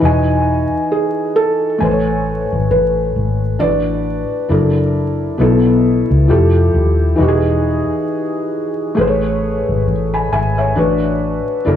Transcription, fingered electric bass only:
0.02 0.65 E1 loud
1.82 2.44 A1 loud
2.52 2.69 G#1 medium
2.71 3.10 A1 loud
3.16 3.55 G#1 medium
3.61 4.23 A1 loud
4.50 5.29 F#1 loud
5.40 6.02 B1 medium
6.10 6.27 C#2 medium
6.29 6.69 F1 loud
6.74 7.13 D#1 loud
7.19 7.81 E1 loud
8.98 9.60 A1 loud
9.69 9.85 G#1 medium
9.87 10.27 A1 loud
10.32 10.72 G#1 medium
10.77 11.39 A1 loud
11.67 11.76 F#1 loud

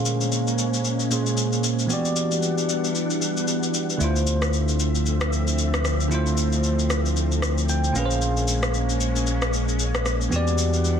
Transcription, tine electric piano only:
0.00 1.06 A#2 medium
0.00 1.07 A#3 medium
0.00 1.08 C#4 medium
0.00 1.09 G#4 medium
0.00 1.10 C5 medium
0.00 1.92 F5 medium
1.10 1.89 A#2 medium
1.10 1.90 A#3 medium
1.10 1.90 C#4 medium
1.10 1.91 G#4 medium
1.10 1.91 C5 medium
1.87 3.95 E3 medium
1.87 3.96 B3 medium
1.87 3.96 F#4 medium
1.92 3.97 G4 medium
1.92 3.98 D5 medium
3.97 6.05 D3 medium
3.97 6.06 A3 medium
3.97 6.07 E4 medium
4.03 6.08 F4 medium
4.03 6.09 C5 medium
6.08 7.90 D3 medium
6.08 7.91 A3 medium
6.08 7.92 E4 medium
6.13 7.93 F4 medium
6.13 7.93 C5 medium
7.69 7.94 G5 medium
7.92 10.00 A#2 medium
7.92 10.01 A#3 medium
7.92 10.02 C#4 medium
7.92 8.20 F5 medium
7.97 10.03 G#4 medium
7.97 8.04 B4 medium
8.05 10.07 C5 medium
10.29 11.00 E3 medium
10.29 11.00 B3 medium
10.29 11.00 F#4 medium
10.34 11.00 G4 medium
10.34 11.00 D5 medium

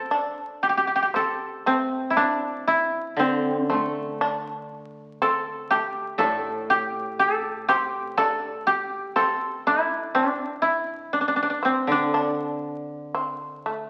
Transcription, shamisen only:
0.00 0.11 C4 soft
0.11 1.14 D4 medium
1.14 1.66 C4 medium
1.66 2.17 A3 medium
2.17 3.18 D4 medium
3.70 4.21 C4 medium
4.21 5.21 D4 medium
5.22 5.70 C4 medium
5.71 6.20 A3 medium
6.20 7.20 D4 medium
7.69 8.17 C4 medium
8.18 9.16 D4 medium
9.16 9.66 C4 medium
9.67 10.15 A3 medium
10.15 11.13 D4 medium
11.63 12.13 C4 medium
12.14 13.14 D4 medium
13.14 13.66 C4 medium
13.66 13.90 A3 medium

